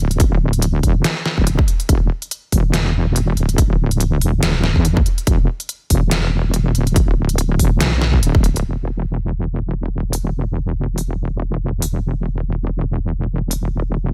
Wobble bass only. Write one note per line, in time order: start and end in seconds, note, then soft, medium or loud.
0.00 0.85 D1 medium
0.83 1.03 E1 medium
1.38 1.57 D1 loud
1.89 2.09 E1 loud
2.52 3.36 E1 medium
3.37 4.23 D1 medium
4.22 4.41 E1 medium
4.43 4.74 D1 loud
4.76 5.05 E2 medium
5.27 5.47 E1 loud
5.90 6.74 E1 medium
6.75 7.61 D1 medium
7.59 7.79 E1 medium
7.80 8.22 B1 medium
8.23 8.64 D1 medium
8.65 14.13 E1 medium